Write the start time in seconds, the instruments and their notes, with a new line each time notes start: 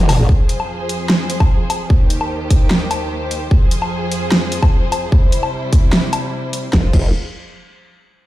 Already playing: wobble bass F1, string section F3 F4 G#4 A#4
0.09 open hi-hat, mid tom, low woodblock
0.20 wobble bass G#1, mid tom
0.29 string section F2 F3 G#4 C5, kick
0.49 closed hi-hat
0.60 low woodblock
0.89 closed hi-hat
1.10 snare
1.30 closed hi-hat
1.40 kick, low woodblock
1.70 closed hi-hat, low woodblock
1.90 string section D#2 D#3 G4 C5, kick
2.10 closed hi-hat
2.21 low woodblock
2.50 kick, closed hi-hat
2.71 snare
2.91 closed hi-hat, low woodblock
3.31 closed hi-hat
3.51 string section F2 F3 G#4, kick
3.71 closed hi-hat
3.82 low woodblock
4.12 closed hi-hat
4.32 snare
4.52 closed hi-hat
4.63 kick, low woodblock
4.92 closed hi-hat, low woodblock
5.12 string section C3 G3 E4, kick
5.32 closed hi-hat
5.43 low woodblock
5.73 kick, closed hi-hat
5.93 snare
6.13 closed hi-hat, low woodblock
6.53 closed hi-hat
6.73 wobble bass F1, string section F3 F4 G#4 C5, kick, snare
6.93 wobble bass F1, kick, crash